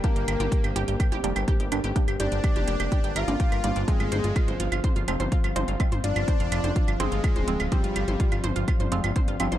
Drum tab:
HH |xxxxxxxxxxxxxxxx|xxxxxxxxxxxxxxxx|xxxxxxxxxxxxxxxx|xxxxxxxxxxxxxxxx|
CL |--x--x--x--x--x-|-x--x--x--x--x--|-x--x--x--x--x--|x--x--x--x--x--x|
T2 |o--o--o--o--o--o|--o--o--o--o--o-|--o--o--o--o--o-|-o--o--o--o--o--|
BD |o---o---o---o---|o---o---o---o---|o---o---o---o---|o---o---o---o---|

HH |xxxxxxxxxxxxxxxx|
CL |--x--x--x--x--x-|
T2 |o--o--o--o--o--o|
BD |o---o---o---o---|